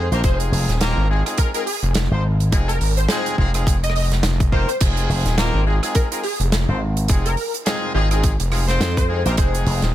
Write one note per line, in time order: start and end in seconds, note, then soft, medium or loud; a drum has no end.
0.12 0.22 A#1 loud
0.12 0.22 A#3 loud
0.12 0.22 C4 loud
0.12 0.22 D#4 medium
0.12 0.22 F4 medium
0.12 0.22 A#4 loud
0.12 0.19 C5 medium
0.12 closed hi-hat medium
0.24 0.51 F1 loud
0.24 0.78 G#3 medium
0.24 0.78 C4 medium
0.24 0.78 D#4 medium
0.24 0.78 F4 medium
0.24 0.78 G#4 medium
0.24 0.34 C5 medium
0.24 kick loud
0.24 closed hi-hat medium
0.40 closed hi-hat soft
0.52 0.66 F1 loud
0.52 open hi-hat medium
0.69 0.95 D#1 loud
0.69 snare soft
0.69 closed hi-hat medium
0.81 1.04 A#3 medium
0.81 1.04 C4 medium
0.81 1.04 D#4 medium
0.81 1.04 F4 medium
0.81 1.04 A#4 loud
0.81 snare loud
0.81 closed hi-hat medium
0.97 1.23 G#1 loud
1.09 1.23 G#3 medium
1.09 1.23 C4 medium
1.09 1.23 D#4 medium
1.09 1.23 F4 medium
1.09 1.23 G#4 medium
1.25 1.50 G#3 medium
1.25 1.50 C4 medium
1.25 1.50 D#4 medium
1.25 1.50 F4 medium
1.25 1.50 G#4 medium
1.25 cross-stick medium
1.25 closed hi-hat medium
1.38 1.49 A#4 medium
1.38 kick loud
1.38 closed hi-hat medium
1.54 1.66 G#3 medium
1.54 1.66 C4 medium
1.54 1.66 D#4 medium
1.54 1.66 F4 medium
1.54 1.66 G#4 medium
1.54 1.62 A#4 medium
1.54 closed hi-hat medium
1.66 1.90 G#4 medium
1.66 open hi-hat medium
1.83 2.09 F1 loud
1.83 closed hi-hat soft
1.95 snare loud
1.95 closed hi-hat medium
2.11 2.50 G#1 loud
2.11 2.23 C4 medium
2.11 2.23 D#4 medium
2.11 2.23 F4 medium
2.11 2.23 C5 medium
2.40 closed hi-hat medium
2.52 2.79 F1 loud
2.52 2.75 G#3 medium
2.52 2.75 C4 medium
2.52 2.75 D#4 medium
2.52 2.75 F4 medium
2.52 2.75 G#4 medium
2.52 kick loud
2.52 closed hi-hat medium
2.68 2.90 A#4 medium
2.68 closed hi-hat medium
2.81 3.07 G#1 loud
2.81 open hi-hat medium
2.97 3.05 C5 medium
2.97 closed hi-hat soft
3.09 3.35 G#3 loud
3.09 3.35 C4 loud
3.09 3.35 D#4 medium
3.09 3.35 F4 medium
3.09 3.35 G#4 loud
3.09 3.20 C5 medium
3.09 snare loud
3.09 closed hi-hat medium
3.26 closed hi-hat medium
3.38 4.22 F1 loud
3.38 3.52 G#3 loud
3.38 3.52 C4 loud
3.38 3.52 D#4 medium
3.38 3.52 F4 medium
3.38 3.52 G#4 loud
3.38 kick medium
3.54 3.76 G#3 medium
3.54 3.76 C4 medium
3.54 3.76 D#4 medium
3.54 3.76 F4 medium
3.54 3.76 G#4 medium
3.54 cross-stick medium
3.54 closed hi-hat medium
3.67 kick loud
3.67 cross-stick soft
3.67 closed hi-hat medium
3.84 3.91 D#5 medium
3.84 closed hi-hat medium
3.90 cross-stick medium
3.95 4.06 D#5 medium
3.95 open hi-hat medium
4.12 snare soft
4.12 closed hi-hat medium
4.23 4.66 F1 loud
4.23 snare loud
4.23 closed hi-hat medium
4.40 kick loud
4.40 closed hi-hat medium
4.52 4.68 A#3 loud
4.52 4.68 C4 medium
4.52 4.68 D#4 medium
4.52 4.68 F4 medium
4.52 4.68 A#4 loud
4.52 4.63 C5 medium
4.52 kick medium
4.68 4.76 C5 medium
4.68 closed hi-hat medium
4.80 5.08 F1 loud
4.80 5.35 G#3 medium
4.80 5.35 C4 medium
4.80 5.35 D#4 medium
4.80 5.35 F4 medium
4.80 5.35 G#4 medium
4.80 kick loud
4.80 closed hi-hat medium
4.80 crash medium
4.97 closed hi-hat medium
5.09 5.23 F1 medium
5.09 open hi-hat medium
5.25 5.52 D#1 loud
5.25 snare soft
5.25 closed hi-hat medium
5.38 5.61 A#3 medium
5.38 5.61 C4 medium
5.38 5.61 D#4 medium
5.38 5.61 F4 medium
5.38 5.61 A#4 loud
5.38 snare loud
5.38 closed hi-hat medium
5.54 5.80 G#1 loud
5.66 5.80 G#3 medium
5.66 5.80 C4 medium
5.66 5.80 D#4 medium
5.66 5.80 F4 medium
5.66 5.80 G#4 medium
5.82 6.07 G#3 medium
5.82 6.07 C4 medium
5.82 6.07 D#4 medium
5.82 6.07 F4 medium
5.82 6.07 G#4 medium
5.82 cross-stick medium
5.82 closed hi-hat medium
5.95 6.06 A#4 medium
5.95 kick loud
5.95 closed hi-hat medium
6.11 6.23 G#3 medium
6.11 6.23 C4 medium
6.11 6.23 D#4 medium
6.11 6.23 F4 medium
6.11 6.23 G#4 medium
6.11 6.19 A#4 medium
6.11 closed hi-hat medium
6.23 6.47 G#4 loud
6.23 open hi-hat medium
6.40 6.66 F1 loud
6.40 closed hi-hat medium
6.52 snare loud
6.52 closed hi-hat medium
6.68 7.07 G#1 loud
6.68 6.80 C4 medium
6.68 6.80 D#4 medium
6.68 6.80 F4 medium
6.68 6.80 C5 medium
6.97 closed hi-hat medium
7.08 7.36 F1 loud
7.08 7.32 G#3 medium
7.08 7.32 C4 medium
7.08 7.32 D#4 medium
7.08 7.32 F4 medium
7.08 7.32 G#4 medium
7.08 kick loud
7.08 closed hi-hat loud
7.26 7.47 A#4 medium
7.26 closed hi-hat medium
7.37 open hi-hat medium
7.54 closed hi-hat medium
7.66 7.92 G#3 medium
7.66 7.92 C4 medium
7.66 7.92 D#4 medium
7.66 7.92 F4 medium
7.66 7.92 G#4 loud
7.66 snare loud
7.66 closed hi-hat medium
7.94 8.37 G#1 loud
7.94 8.09 G#3 loud
7.94 8.09 C4 loud
7.94 8.09 D#4 medium
7.94 8.09 F4 medium
7.94 8.18 G#4 medium
7.94 8.09 G#4 loud
8.11 8.33 G#3 medium
8.11 8.33 C4 medium
8.11 8.33 D#4 medium
8.11 8.33 F4 medium
8.11 8.33 G#4 loud
8.11 cross-stick soft
8.11 closed hi-hat medium
8.23 kick loud
8.23 cross-stick soft
8.23 closed hi-hat loud
8.40 8.79 F1 loud
8.40 closed hi-hat medium
8.52 8.66 G#3 medium
8.52 8.66 C4 medium
8.52 8.66 D#4 medium
8.52 8.66 F4 medium
8.52 8.66 G#4 medium
8.52 cross-stick medium
8.52 open hi-hat medium
8.68 9.06 C4 medium
8.68 9.06 D#4 medium
8.68 9.06 F4 medium
8.68 9.06 C5 loud
8.68 snare soft
8.68 closed hi-hat medium
8.80 9.23 F2 loud
8.80 snare loud
8.80 closed hi-hat loud
8.97 9.19 C5 medium
8.97 kick loud
8.97 closed hi-hat medium
9.08 9.21 G#3 medium
9.08 9.21 C4 medium
9.08 9.22 D#4 medium
9.08 9.21 F4 medium
9.08 9.21 G#4 loud
9.25 9.36 A#1 loud
9.25 9.36 A#3 loud
9.25 9.36 C4 loud
9.25 9.36 D#4 medium
9.25 9.36 F4 medium
9.25 9.36 A#4 loud
9.25 9.33 C5 medium
9.25 closed hi-hat medium
9.37 9.65 F1 loud
9.37 9.92 G#3 medium
9.37 9.92 C4 medium
9.37 9.92 D#4 medium
9.37 9.92 F4 medium
9.37 9.92 G#4 medium
9.37 9.48 C5 medium
9.37 kick loud
9.37 closed hi-hat medium
9.55 closed hi-hat medium
9.66 9.80 F1 loud
9.66 open hi-hat medium
9.82 9.95 D#1 loud
9.82 snare soft
9.82 closed hi-hat medium